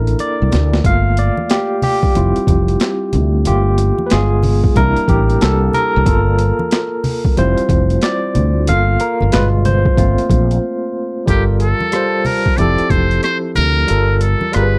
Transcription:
Already playing: A1 A#3 D4 E4 A4 A#4
0.07 closed hi-hat
0.19 D5, closed hi-hat, muted conga
0.42 C2
0.52 D2, snare, closed hi-hat, low conga
0.73 snare
0.84 G1 A3 A#3 F4 F5, kick, closed hi-hat
1.17 D5, closed hi-hat
1.37 high conga
1.50 G4, snare, clap, closed hi-hat
1.82 G4, open hi-hat, low conga
2.03 kick
2.15 F1 G3 C4 E4 F4, closed hi-hat, muted conga, high conga
2.36 muted fretless electric bass stroke, closed hi-hat
2.47 F1, kick, closed hi-hat, muted conga, high conga
2.68 closed hi-hat
2.80 snare, clap, closed hi-hat
3.13 D2, closed hi-hat, low conga
3.45 G1 A3 A#3 F4 G4, closed hi-hat
3.78 closed hi-hat, muted conga
3.98 high conga
4.06 B4, closed hi-hat
4.11 G1 G#3 B3 F4 G#4, snare, clap
4.43 open hi-hat, low conga
4.64 kick
4.76 C2 G3 A#3 D4 E4 A#4, kick, closed hi-hat, muted conga, high conga
4.96 muted fretless electric bass stroke, closed hi-hat
5.08 A1 G4, kick, closed hi-hat, high conga
5.30 closed hi-hat
5.41 C2 A4, snare, clap, closed hi-hat
5.73 A#4, closed hi-hat, low conga
5.96 C2
6.06 G1 A#3 F4 A4, kick, closed hi-hat, muted conga
6.39 closed hi-hat, muted conga
6.59 high conga
6.71 snare, clap, closed hi-hat
7.04 open hi-hat, low conga
7.25 kick
7.37 F1 G3 C4 E4 F4 C5, closed hi-hat, muted conga, high conga
7.58 muted fretless electric bass stroke, closed hi-hat
7.69 F1, kick, closed hi-hat, muted conga, high conga
7.90 closed hi-hat
8.02 D5, snare, clap, closed hi-hat
8.35 D2, closed hi-hat, muted conga, low conga
8.67 G1 A#3 F4 A4 F5, closed hi-hat, muted conga
9.00 A#4, closed hi-hat, muted conga
9.21 G1, high conga
9.32 G1 B2 G#3 F4 B4, snare, clap, closed hi-hat, muted conga
9.65 C5, closed hi-hat, low conga
9.85 kick
9.97 G1 A3 A#3 C4 F4, kick, closed hi-hat, muted conga, high conga
10.18 muted fretless electric bass stroke, closed hi-hat
10.30 A#1, kick, closed hi-hat, muted conga, high conga
10.51 closed hi-hat
11.26 G1 G3 F4 G4 A4 A#4, kick, closed hi-hat, muted conga
11.60 A4, closed hi-hat, muted conga
11.80 high conga
11.92 G3 F4 C5 A5, cross-stick, closed hi-hat, muted conga
12.25 A#4, open hi-hat, muted conga, low conga
12.46 kick
12.57 F1 F3 C4 E4 G4 A4 D5, closed hi-hat, muted conga, high conga
12.78 muted fretless electric bass stroke, closed hi-hat
12.90 F1 C5, kick, closed hi-hat, muted conga, high conga
13.11 closed hi-hat
13.23 C5, cross-stick, closed hi-hat
13.55 D2 A#4, closed hi-hat, muted conga, low conga
13.87 G1 G3 F4 A4 A#4, closed hi-hat, muted conga
14.17 A#4, closed hi-hat
14.22 A4
14.41 high conga
14.52 G1 G3 F4 G#4 B4, cross-stick, closed hi-hat, muted conga
14.56 A#4
14.63 B4

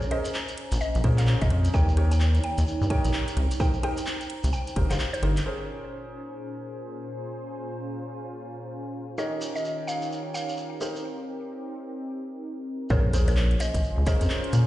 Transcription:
Already playing: C#4 C5 G#5 A#5
0.02 shekere
0.11 C#4 G#4 A#4 C5 D#5, cross-stick, closed hi-hat
0.25 closed hi-hat, shekere
0.34 clap, shekere
0.48 closed hi-hat, shekere
0.57 closed hi-hat
0.72 A#1, closed hi-hat, shekere
0.81 D#5, shekere
0.95 A#1, closed hi-hat, shekere
1.04 A#2 C#4 G#4 A#4 C5, kick, closed hi-hat
1.18 F5, clap, closed hi-hat, shekere
1.27 clap, shekere
1.41 G#1 D#5, kick, closed hi-hat, shekere
1.50 F2, cross-stick, closed hi-hat
1.65 closed hi-hat, shekere
1.74 D#2 D#4 G4 A#4 C#5 G5, kick, shekere
1.79 C#5
1.88 shekere
1.97 D#4 G4 A#4 C#5, cross-stick, closed hi-hat
2.09 G5, closed hi-hat, shekere
2.20 clap, shekere
2.35 closed hi-hat, shekere
2.44 G5, closed hi-hat
2.58 D#2, closed hi-hat, shekere
2.67 shekere
2.81 G2, shekere
2.90 D#4 G4 A#4 C#5 G5, kick, closed hi-hat
3.04 A#1, closed hi-hat, shekere
3.13 clap, shekere
3.28 closed hi-hat, shekere
3.37 C2, cross-stick, closed hi-hat
3.51 C5, closed hi-hat, shekere
3.60 D#4 G4 A#4 C5 G5, kick, shekere
3.73 shekere
3.83 D#4 G4 A#4 C5 G5, cross-stick, closed hi-hat
3.97 closed hi-hat, shekere
4.06 clap, shekere
4.21 closed hi-hat, shekere
4.30 closed hi-hat
4.43 C2, closed hi-hat, shekere
4.53 G5, shekere
4.67 closed hi-hat, shekere
4.76 G1 D#4 G4 A#4 C5, kick, closed hi-hat
4.90 G1 D#4 G4 A#4 C5 F5, clap, closed hi-hat, shekere
4.99 clap, shekere
5.13 C5, closed hi-hat, shekere
5.23 G1 D#4 G4 A#4 C5, closed hi-hat
5.37 clap, closed hi-hat, shekere
5.46 A#2 C#4 F4 G#4 A#4 C5
5.68 G#5
9.18 D#3 D#4 G4 A#4 C#5 D#5, shekere
9.30 C#5
9.40 G5, shekere
9.55 D#5, shekere
9.65 shekere
9.87 F5, shekere
10.02 shekere
10.12 shekere
10.34 F5, shekere
10.49 shekere
10.57 shekere
10.81 C4 D#4 G4 A#4 C5, shekere
10.96 shekere
12.90 A#1 C#4 F4 G#4 A#4 C5 C#5, kick, sub drop, shekere
13.09 G#5
13.13 C#4 G#4 A#4 C5, cross-stick, closed hi-hat, shekere
13.28 A#4 C#5, closed hi-hat, shekere
13.36 clap, shekere
13.51 closed hi-hat
13.60 C5 D#5, closed hi-hat, shekere
13.74 A#1, kick, closed hi-hat, shekere
13.84 shekere
13.98 C#2
14.07 C#4 G#4 A#4 C5 D#5, kick, closed hi-hat, shekere
14.21 F2, closed hi-hat, shekere
14.30 clap, shekere
14.44 closed hi-hat
14.53 A#2, cross-stick, closed hi-hat, shekere

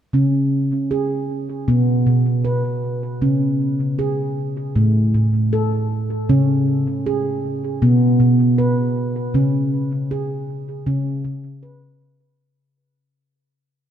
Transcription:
0.13 C#3 C#4
0.91 G#4
1.68 B2 B3
2.07 B2
2.45 B4
3.22 C#3 C#4
3.99 G#4
4.76 A2 A3
5.14 A2
5.53 A4
6.29 C#3 C#4
7.06 G#4
7.82 B2 B3
8.20 B2
8.58 B4
9.34 C#3 C#4
10.11 G#4
10.86 C#3 C#4
11.25 C#3
11.63 B4

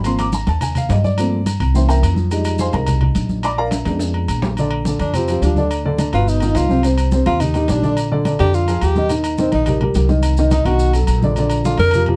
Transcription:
Already playing: G#1
0.04 F3 A#3 C4 C6, high conga, low agogo, maracas
0.18 D6, high conga, low agogo, maracas
0.33 A#5, high conga, maracas
0.47 D#2 A5, high conga, low agogo, maracas
0.61 G#5, high conga, low conga, low agogo, maracas
0.75 F5, high conga, low conga, low agogo, maracas
0.89 G2 D#5, high conga, low timbale, low agogo, maracas
1.04 D5, high conga, maracas
1.18 F3 A3 A#3 C4, high conga, low agogo, maracas
1.32 high conga
1.46 high conga, low agogo, maracas
1.60 C2, high conga, low agogo, maracas
1.74 E3 A#3 C#4 C5 E5 G5 C6, high conga, maracas
1.88 A#4 E5 G5 A#5, high conga, low agogo, maracas
2.03 F2, high conga, low agogo, maracas
2.16 high conga, maracas
2.31 G3 G#3 D#4, low agogo, maracas
2.45 high conga, low agogo, maracas
2.58 C5 F5 G#5 C6, high conga, maracas
2.73 C2 A#4 A#5, high conga, low agogo, maracas
2.87 high conga, low conga, low agogo, maracas
3.01 high conga, low conga, low agogo
3.15 A#1, high conga, low agogo, maracas
3.29 high conga, maracas
3.43 D5 A#5 B5 D6, low agogo, maracas
3.58 A#4 D5 F5 A#5, high conga
3.71 high conga, high timbale, low agogo, maracas
3.85 F2 G#3 B3 D4, high timbale, low agogo, maracas
3.99 high conga, high timbale, maracas
4.14 high conga, low agogo
4.28 A#1, high conga, low agogo, maracas
4.42 high conga, low timbale, maracas
4.57 D3 D4 D5, high conga, low agogo, maracas
4.71 high conga, low agogo
4.85 D3 D4 D5, high conga, maracas
5.00 F2 D4, high conga, low agogo, maracas
5.14 F3 C4 F4 G4, high conga, low conga, low agogo, maracas
5.28 F3 F4 G4, high conga, low agogo, maracas
5.42 D2 F3 D4 F4 G4, high conga, low agogo, maracas
5.56 D3 D4 D5, high conga, maracas
5.71 low agogo, maracas
5.84 D3 D4 D5, high conga
5.98 D3 D4 D5, high conga, low agogo, maracas
6.13 G1 B2 B3 F4 B4, high conga, low agogo, maracas
6.27 D#4, high conga, maracas
6.40 D#3 D#4 F4, high conga, low agogo, maracas
6.55 C2 F4, high conga, low timbale, low agogo, maracas
6.70 C3 C4 C5, high conga, maracas
6.83 C3 C4 C5, high conga, low agogo, maracas
6.98 high conga, low agogo, maracas
7.11 C3 C4 C5, high conga, maracas
7.26 D#2 F4, high conga, low agogo, maracas
7.40 D#3 D#4 G4, high conga, low conga, low agogo, maracas
7.54 D#3 D#4 G4, high conga, low agogo, maracas
7.68 A#1 D#3 D4 D#4 G4, high conga, low timbale, low agogo, maracas
7.82 D3 D4 D5, high conga, maracas
7.97 high conga, low agogo, maracas
8.12 D3 D4 D5, high conga
8.25 D3 D4 D5, high conga, low agogo, maracas
8.39 F2 D3 D4 G4 D5, low agogo, maracas
8.53 F4, high conga, maracas
8.67 F3 F4 G#4, high conga, low agogo, maracas
8.81 D#2 G4, high conga, low agogo, maracas
8.96 D#3 D#4 D#5, high conga, maracas
9.09 D#3 D#4 D#5, high conga, low agogo, maracas
9.24 high conga, low agogo, maracas
9.38 D#3 C4 D#4 D#5, high conga, maracas
9.52 A#1 D#4, high conga, low agogo, maracas
9.66 G3 G4 A#4, high conga, low conga, low agogo, maracas
9.81 G3 G4 A#4, high conga, low conga, low agogo
9.94 C2 G3 G4 A#4, high conga, low agogo, maracas
10.09 D#3 D#4 D#5, high conga, maracas
10.23 high conga, low agogo, maracas
10.37 D#3 D#4 D#5, high conga, maracas
10.51 D#3 D#4 D#5, high conga, low agogo, maracas
10.65 B1 D#3 D#4 F#4 D#5, high conga, low agogo, maracas
10.79 high conga, maracas
10.93 F#3 F#4 A4, high conga, low agogo, maracas
11.07 A#1, high conga, low agogo, maracas
11.22 D3 D4 D5, high conga, maracas
11.36 D3 D4 D5, high conga, low agogo, maracas
11.50 high conga, low agogo, maracas
11.65 D3 D4 F4 D5, high conga, maracas
11.78 F2 A#4, high conga, low agogo, maracas
11.91 F3 F4 G4, high conga, low conga, low agogo, maracas
12.06 F3 F4 G4, high conga, low conga, low agogo

